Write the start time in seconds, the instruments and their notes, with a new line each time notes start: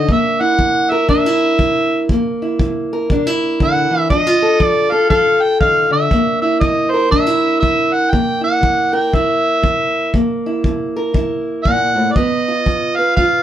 0.09 steel-string acoustic guitar C3 A#3, harmonica E5, kick
0.40 steel-string acoustic guitar E4, harmonica F#5
0.59 steel-string acoustic guitar C3, kick
0.91 steel-string acoustic guitar A#4, harmonica E5
1.08 steel-string acoustic guitar C3 D4, harmonica E5, kick
1.26 steel-string acoustic guitar E4
1.59 steel-string acoustic guitar C3, kick
2.09 steel-string acoustic guitar C3 A#3, kick
2.42 steel-string acoustic guitar E4
2.59 steel-string acoustic guitar C3, kick
2.93 steel-string acoustic guitar A#4
3.10 steel-string acoustic guitar C3 D4, kick
3.27 steel-string acoustic guitar E4
3.60 steel-string acoustic guitar D3, harmonica F#5, kick
3.91 steel-string acoustic guitar E3
4.10 steel-string acoustic guitar F3 D4, harmonica D#5, kick
4.27 steel-string acoustic guitar F4
4.42 steel-string acoustic guitar A4
4.60 steel-string acoustic guitar F3, harmonica D5, kick
4.92 steel-string acoustic guitar A4, harmonica F5
5.10 steel-string acoustic guitar F3 A4, harmonica F5, kick
5.42 harmonica G5
5.61 steel-string acoustic guitar D#3, harmonica F5, kick
5.90 steel-string acoustic guitar D3, harmonica E5
6.11 steel-string acoustic guitar C3 A#3, kick
6.42 steel-string acoustic guitar E4, harmonica E5
6.60 steel-string acoustic guitar C3, harmonica D#5, kick
6.91 steel-string acoustic guitar A#4, harmonica C5
7.10 steel-string acoustic guitar C3 D4, harmonica E5, kick
7.27 steel-string acoustic guitar E4
7.60 steel-string acoustic guitar C3, harmonica E5, kick
7.93 harmonica F#5
8.10 steel-string acoustic guitar C3 A#3, harmonica G5, kick
8.41 steel-string acoustic guitar E4, harmonica F#5
8.61 steel-string acoustic guitar C3, kick
8.93 steel-string acoustic guitar A#4, harmonica G5
9.13 steel-string acoustic guitar C3 E4, harmonica E5, kick
9.62 steel-string acoustic guitar C3, kick
10.14 steel-string acoustic guitar C3 A#3, kick
10.46 steel-string acoustic guitar E4
10.64 steel-string acoustic guitar C3, kick
10.96 steel-string acoustic guitar A#4
11.14 steel-string acoustic guitar C3 E4, kick
11.64 steel-string acoustic guitar A#2, harmonica F#5, kick
11.95 steel-string acoustic guitar A2
12.12 harmonica D5
12.16 steel-string acoustic guitar G2 B3, harmonica D#5, kick
12.48 steel-string acoustic guitar F4
12.66 steel-string acoustic guitar G2, kick
12.96 steel-string acoustic guitar B4, harmonica F5
13.17 steel-string acoustic guitar G2 F4, harmonica F5, kick